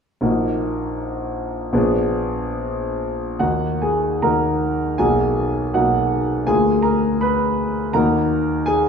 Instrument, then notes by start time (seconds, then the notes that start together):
grand piano
0.21 A#1 A#3 D#4 F#4
1.73 A#1 B3 D4 G#4
3.39 D#2 A#3 D#4 F#4 F#5
3.82 G#4 G#5
4.22 D#2 A#3 D#4 F#4 A#4 A#5
4.98 B1 A#3 D#4 F#4 G#4 G#5
5.74 B1 A#3 D#4 F#4 F#5
6.46 D2 A#3 F4 G#4 G#5
6.82 A#4 A#5
7.21 B4 B5
7.93 D#2 A#3 D#4 F#4 A#4 A#5
8.66 G#4 G#5